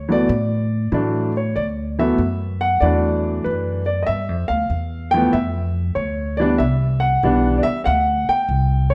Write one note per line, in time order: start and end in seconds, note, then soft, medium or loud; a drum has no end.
0.00 0.25 D2 medium
0.09 0.27 E3 medium
0.09 0.28 F#3 medium
0.09 0.28 A3 medium
0.09 0.28 B3 medium
0.09 0.90 D5 medium
0.29 0.89 A2 medium
0.92 1.52 A2 medium
0.92 1.31 E3 medium
0.92 1.31 F#3 medium
0.92 1.31 A3 medium
0.92 1.32 D4 medium
1.37 1.57 C#5 medium
1.56 2.17 D2 medium
1.56 1.65 D5 medium
1.99 2.17 E3 medium
1.99 2.18 F#3 medium
1.99 2.18 A3 medium
1.99 2.18 B3 medium
1.99 2.64 E5 medium
2.18 2.80 F#2 medium
2.61 2.83 F#5 medium
2.81 3.43 E2 medium
2.81 3.80 E3 medium
2.81 3.81 F#3 medium
2.81 3.81 A3 medium
2.81 3.47 D5 medium
2.85 3.81 D4 medium
3.44 4.07 F#2 medium
3.44 3.85 B4 medium
3.86 4.02 D5 medium
4.03 4.08 D#5 medium
4.03 4.47 E5 medium
4.08 4.29 G2 medium
4.29 4.49 F2 soft
4.48 4.69 D2 medium
4.48 5.09 F5 medium
4.70 5.32 E2 medium
5.11 5.33 E3 medium
5.11 5.33 F3 medium
5.11 5.33 A3 medium
5.11 5.34 G5 loud
5.15 5.33 B3 medium
5.33 5.95 F2 medium
5.33 5.93 E5 medium
5.95 6.58 D2 medium
5.95 6.41 C#5 medium
6.37 6.59 E3 medium
6.37 6.59 G3 medium
6.37 6.59 B3 medium
6.37 6.58 D5 medium
6.41 6.60 D4 medium
6.58 7.22 C2 medium
6.58 7.04 E5 medium
7.00 7.57 F#5 medium
7.23 7.63 B1 medium
7.23 7.62 E3 medium
7.23 7.62 G3 medium
7.23 7.63 B3 medium
7.23 7.63 D4 medium
7.58 7.67 D5 medium
7.63 7.80 E5 loud
7.63 muted upright bass stroke soft
7.84 8.27 D2 medium
7.84 7.88 F5 medium
7.84 8.30 F#5 medium
8.28 8.88 G5 medium
8.28 muted upright bass stroke soft
8.49 8.94 C2 medium
8.90 8.94 C#5 medium